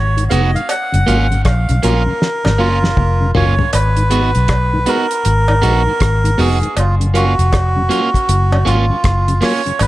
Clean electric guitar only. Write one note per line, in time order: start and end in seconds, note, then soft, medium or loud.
0.30 0.49 B3 medium
0.30 0.50 D#4 medium
0.30 0.50 F#4 medium
1.07 1.25 A#3 medium
1.07 1.26 C#4 medium
1.07 1.26 F4 medium
1.83 2.01 A#3 medium
1.83 2.02 C#4 medium
1.83 2.02 F4 loud
2.58 2.77 A#3 medium
2.58 2.78 C#4 medium
2.58 2.78 F4 medium
3.35 3.53 A#3 medium
3.35 3.54 C#4 medium
3.35 3.54 F4 medium
4.10 4.29 B3 medium
4.10 4.29 D#4 medium
4.10 4.30 F#4 medium
4.86 5.05 B3 medium
4.86 5.05 D#4 medium
4.86 5.06 F#4 medium
5.62 5.81 B3 medium
5.62 5.81 D#4 medium
5.62 5.82 F#4 medium
6.38 6.57 B3 medium
6.38 6.57 D#4 medium
6.38 6.58 F#4 medium
7.14 7.33 A#3 medium
7.14 7.33 C#4 medium
7.14 7.34 F4 medium
7.89 8.08 A#3 medium
7.89 8.09 C#4 medium
7.89 8.09 F4 medium
8.65 8.84 A#3 medium
8.65 8.85 C#4 medium
8.65 8.85 F4 loud
9.41 9.60 A#3 medium
9.41 9.61 C#4 medium
9.41 9.61 F4 medium